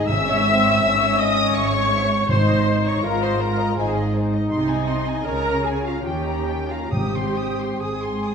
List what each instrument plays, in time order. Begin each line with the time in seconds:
0.09 double bass section G#1, timpani G#2, cello section G#2, french horn section C#4, viola section E5, violin section E5 E6
0.28 violin section C#5
0.47 french horn section C4, violin section E5
0.65 violin section C#5
0.83 double bass section G#1, cello section G#2, french horn section C#4, violin section E5
1.00 violin section C#5
1.19 viola section D#5, violin section E5 D#6
1.37 violin section C#5
1.55 double bass section G#1, cello section G#2, viola section C#5, violin section E5 C#6
1.73 violin section C#5
1.92 violin section E5
2.10 violin section C#5
2.29 double bass section G#1, timpani G#2, cello section G#2, french horn section D#4, violin section C5 C6, viola section C5
2.48 violin section D#5
2.66 violin section C5
2.85 viola section C#5, violin section D#5 C#6
3.03 double bass section G#1, cello section G#2, french horn section F4, viola section A#4, violin section C5 A#5
3.21 viola section C5, violin section D#5 C6
3.40 viola section A#4, violin section C5 A#5
3.59 violin section D#5
3.71 viola section A#4
3.77 double bass section G#1, cello section G#2, french horn section D#4, viola section G#4, violin section C5 G#5
3.96 violin section D#5
4.15 violin section C5
4.33 violin section D#5
4.51 double bass section C2, cello section C3, viola section D#4, violin section D#5 C6
4.70 violin section G#5
4.89 violin section C6
5.08 violin section G#5
5.25 double bass section C#2, cello section C#3, french horn section C#4, viola section A#4, violin section G#5 A#5
5.48 violin section A#5
5.65 viola section G#4, violin section G#5
5.86 viola section F4, violin section F5 A#5
6.05 double bass section D#2, cello section D#3, viola section G4, violin section G5
6.28 violin section A#5
6.48 violin section G5
6.69 viola section F4, violin section F5 A#5
6.91 double bass section G#1, cello section G#2, timpani G#2, french horn section C4, viola section G4, violin section G5 D#6
7.16 violin section C6
7.38 violin section D#6
7.61 violin section C6
7.81 double bass section G#1, cello section G#2, viola section G#4, violin section G#5 D#6
8.04 violin section C6
8.26 violin section D#6